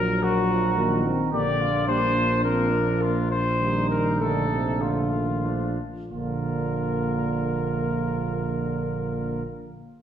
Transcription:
Already playing: tuba A#1, trombone F#3, french horn F#3, trumpet A#4
0.23 trombone F#3, trumpet F#4
0.50 trombone F3
0.77 trombone D#3, french horn A#3
1.05 french horn C4
1.32 tuba A#1, trombone D3, french horn A#3, trumpet G4 D5
1.60 trumpet F4
1.87 trombone G3, french horn A#3, trumpet D4 C5
2.15 trombone F3
2.44 french horn C4, trumpet D4 A#4
2.73 french horn A#3
3.02 trumpet F4
3.31 trumpet C5
3.59 trombone D#3, french horn G3, trumpet D#4
3.90 trumpet A#4
4.20 trombone D3, french horn A3, trumpet A4
4.50 trombone C3
4.80 trombone D3, trumpet F4
5.12 trombone D#3
5.45 trombone F3, french horn A3, trumpet D4
6.11 tuba A#1, trombone D3, french horn A#3, trumpet F4 A#4

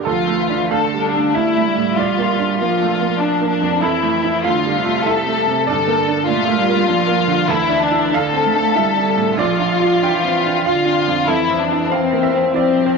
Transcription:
0.05 upright piano D2 A4, cello F3, violin section F4
0.27 upright piano A3
0.40 cello E3
0.49 upright piano D4
0.71 cello D3, upright piano A3 F5, violin section A4
0.93 upright piano G3
1.05 violin section D4
1.15 upright piano A3
1.35 cello A3, upright piano D4 E5, violin section E4
1.57 upright piano A3
1.67 cello G3
1.77 upright piano A2
1.97 upright piano A#1 D5, violin section F4
2.19 upright piano A#3
2.39 upright piano D4
2.59 cello F3, upright piano A#3, violin section F4
2.82 upright piano A3
2.93 cello F3
3.01 upright piano A#3
3.20 violin section D4, upright piano D4
3.41 upright piano A#3
3.49 violin section D4
3.61 upright piano F2
3.82 upright piano F2 A4, cello E3, violin section E4
4.02 upright piano A3
4.24 upright piano E4
4.44 cello D3, upright piano A3 F5, violin section F4
4.65 upright piano G3
4.77 cello C3
4.85 upright piano A3
5.06 upright piano E4 E5, violin section A4
5.26 upright piano A3
5.48 upright piano C3
5.67 upright piano G2 D5, cello D3, violin section A4
5.87 upright piano A#3
6.08 upright piano D4
6.28 upright piano A#2, cello A3, violin section F4
6.46 upright piano A3
6.58 cello G3
6.69 upright piano A#3
6.88 cello F3, upright piano D4
7.07 upright piano A#3
7.28 upright piano D3
7.48 upright piano D2 A4, cello E3, violin section E4
7.69 upright piano D4
7.82 violin section D4
7.91 upright piano E4
8.12 cello D3, upright piano D4 F5, violin section A4
8.33 upright piano C4
8.47 cello A3
8.54 upright piano D4
8.75 cello G3, upright piano E4 E5
8.96 upright piano D4
9.17 upright piano A2
9.37 upright piano A#1 D5, cello F3, violin section F4
9.59 upright piano D4
9.80 upright piano F4
10.02 cello E3, upright piano D4 G5
10.24 upright piano C4
10.45 upright piano D4
10.66 cello D3, upright piano F4 F5, violin section F4
10.85 upright piano D4
11.08 upright piano F2
11.28 upright piano F2 A4, cello E3, violin section E4
11.51 upright piano C4
11.60 violin section D4
11.71 upright piano E4
11.91 upright piano C4 F5, violin section C4
12.13 upright piano A#3
12.23 upright piano E5
12.34 upright piano C4
12.54 cello F3, violin section C4, upright piano E4 D5
12.77 upright piano C4
12.86 upright piano C5

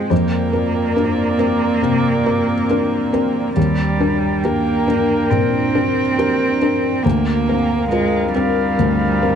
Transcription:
Already playing: felt piano C3 C4 F4 G#4, cello G#3, ambient pad G#3 G5
0.10 felt piano F2, cello A#3, ambient pad C4 A#4 D5
0.53 felt piano C4 A#4
0.96 felt piano D4 A#4
1.38 felt piano C4 A#4
1.82 felt piano C3
2.26 felt piano C4 A#4
2.70 felt piano D4 A#4
3.13 felt piano C4 A#4
3.56 felt piano D#2, cello G3, ambient pad D4 A#4 G5
4.00 felt piano D4 A#4
4.43 cello A#3, felt piano G4 A#4
4.88 felt piano D4 A#4
5.30 felt piano A#2, cello C4
5.75 felt piano D4 A#4
6.18 felt piano G4 A#4
6.62 felt piano D4 A#4
7.03 felt piano D2, cello A#3, ambient pad C4 A#4 F5
7.49 felt piano C4 A#4
7.90 cello G#3, felt piano F4 A#4
8.34 cello G3, felt piano C4 A#4
8.79 felt piano D2
9.23 felt piano C4 A#4

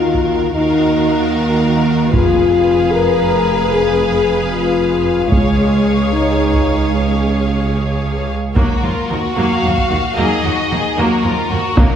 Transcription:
Already playing: double bass section D#2, cello section D#3, french horn section F4, viola section F#4, violin section A#4 F5
0.15 taiko
0.53 double bass section D#2, cello section D#3, french horn section D#4, viola section F#4, violin section A#4 F5
1.34 french horn section A#3
2.11 double bass section F1, cello section F2, french horn section F4, viola section G#4, violin section B4 F5, taiko
2.92 french horn section A#4
3.71 french horn section G#4
4.51 french horn section F4
5.31 cello section C#2, double bass section C#2, french horn section G#3, viola section G#4, violin section C#5 F5, taiko
6.13 french horn section D#4
6.54 taiko
6.93 french horn section C#4
8.55 cello section D#2, double bass section D#2, viola section F#3 A#3, french horn section A#3, violin section F#4 A#4, taiko
8.82 cello section D#2, double bass section D#2, viola section F3 F#3, violin section F4
9.08 cello section D#2, double bass section D#2, viola section D#3 F3, violin section F#4
9.36 cello section D#2, double bass section D#2, viola section F#3 A#3, french horn section F#4, violin section F5
9.63 cello section D#2, double bass section D#2, viola section F3 F#3
9.78 taiko
9.90 cello section D#2, double bass section D#2, viola section D#3 F3
10.16 double bass section D#2, cello section D#2, viola section F#3 A#3, french horn section D#4, violin section G#4 D#5
10.44 cello section D#2, double bass section D#2, viola section F3 F#3, violin section F#4
10.71 double bass section D#2, cello section D#2, viola section D#3 F3, violin section G#4
10.97 cello section D#2, double bass section D#2, viola section F#3 A#3, french horn section A#3, violin section F#4 A#4
11.23 cello section D#2, double bass section D#2, viola section F3 F#3, violin section F4
11.51 cello section D#2, double bass section D#2, viola section D#3 F3, violin section F#4
11.77 cello section D#2, double bass section D#2, viola section F#3 A#3, french horn section A#3, violin section D#4 A#4, taiko

